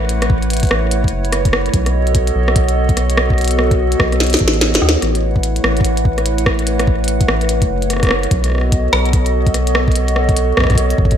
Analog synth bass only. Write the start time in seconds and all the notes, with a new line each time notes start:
Already playing: A1
0.71 A1
1.12 F#1
1.74 B1
2.35 B1
4.00 B1
4.41 A1
4.74 F#1
4.82 D#2
5.02 A1
5.64 A1
7.28 A1
7.70 F#1
8.31 B1
8.93 B1
10.57 B1
10.98 A1